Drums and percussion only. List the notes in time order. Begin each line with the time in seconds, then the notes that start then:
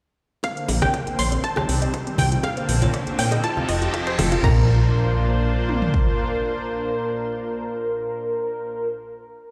0.43 kick, closed hi-hat, high bongo
0.57 closed hi-hat
0.68 open hi-hat, high bongo
0.82 cross-stick, cowbell, high conga
0.94 kick, closed hi-hat
1.07 closed hi-hat, high bongo
1.19 open hi-hat, cowbell
1.32 closed hi-hat, high bongo
1.44 kick, closed hi-hat
1.56 cross-stick, cowbell, high bongo, high conga
1.69 open hi-hat
1.82 closed hi-hat
1.94 kick, closed hi-hat, high bongo
2.07 closed hi-hat
2.18 open hi-hat, high bongo, high conga
2.32 closed hi-hat
2.43 kick, closed hi-hat, high bongo
2.57 closed hi-hat
2.69 open hi-hat
2.81 closed hi-hat, cowbell, high bongo, high conga
2.94 kick, closed hi-hat
3.07 closed hi-hat, high bongo
3.19 open hi-hat, cowbell
3.31 closed hi-hat, high bongo
3.44 kick, closed hi-hat
3.57 high conga
3.68 kick, open hi-hat, high bongo
3.82 closed hi-hat
3.94 kick, closed hi-hat, high bongo
4.07 kick, closed hi-hat
4.19 kick, open hi-hat, high bongo, high conga
4.32 kick, closed hi-hat
4.44 kick, crash
5.69 mid tom
5.82 floor tom
5.94 kick